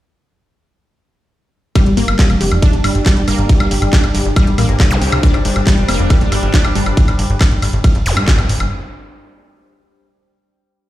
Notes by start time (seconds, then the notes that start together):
1.75 G3 D4, kick, closed hi-hat, ride, high woodblock
1.84 G1 G4 D5, closed hi-hat
1.97 G1 A#3, open hi-hat
2.08 G1, closed hi-hat, high woodblock
2.15 G5
2.19 G3, kick, clap, closed hi-hat, ride
2.30 F1, closed hi-hat, high woodblock
2.41 F1 G4, open hi-hat
2.52 F1, closed hi-hat, high woodblock
2.62 D4, kick, closed hi-hat, ride
2.73 G1, closed hi-hat
2.84 G1 G3, open hi-hat, high woodblock
2.95 G1, closed hi-hat
3.06 G3, kick, clap, closed hi-hat, ride, high woodblock
3.17 G1, closed hi-hat
3.28 G1 A#3, open hi-hat, high woodblock
3.39 G1, closed hi-hat
3.49 G3, kick, closed hi-hat, ride
3.60 G1, closed hi-hat, high woodblock
3.71 G1 G4, open hi-hat
3.82 G1, closed hi-hat, high woodblock
3.93 D4, kick, clap, closed hi-hat, ride
4.04 G1, closed hi-hat, high woodblock
4.15 G1 G3, open hi-hat
4.25 G1, closed hi-hat
4.36 G3, kick, closed hi-hat, ride, high woodblock
4.47 G1 C5, closed hi-hat
4.58 A1 A#3, open hi-hat, high woodblock
4.69 G1, closed hi-hat
4.80 G3, kick, clap, closed hi-hat, ride, high woodblock
4.91 C2, closed hi-hat, zap
5.02 C2 G4, open hi-hat
5.12 C2, closed hi-hat, high woodblock
5.23 G3 D4, kick, closed hi-hat, ride
5.34 G1, closed hi-hat, high woodblock
5.45 G1 G3, open hi-hat
5.56 G1, closed hi-hat, high woodblock
5.67 G3, kick, clap, closed hi-hat, ride
5.78 F1, closed hi-hat
5.88 F1 A#3, open hi-hat, high woodblock
5.99 F1, closed hi-hat
6.10 G3, kick, closed hi-hat, ride, high woodblock
6.21 G1, closed hi-hat
6.32 G1 G4, open hi-hat, high woodblock
6.43 G1, closed hi-hat
6.54 D4, kick, clap, closed hi-hat, ride
6.65 G1, closed hi-hat, high woodblock
6.75 G1 G3, open hi-hat
6.86 G1, closed hi-hat, high woodblock
6.97 kick, closed hi-hat, ride
7.08 G1, closed hi-hat, high woodblock
7.19 G1, open hi-hat
7.30 G1, closed hi-hat
7.41 kick, clap, closed hi-hat, ride, high woodblock
7.52 G1, closed hi-hat
7.62 G1, open hi-hat, high woodblock
7.73 G1, closed hi-hat
7.84 kick, closed hi-hat, ride, high woodblock
7.95 G1, closed hi-hat
8.06 F1, open hi-hat, zap
8.17 G2, high woodblock
8.28 kick, clap, closed hi-hat, ride
8.39 G1, closed hi-hat, high woodblock
8.49 G1, open hi-hat
8.60 G1, closed hi-hat, high woodblock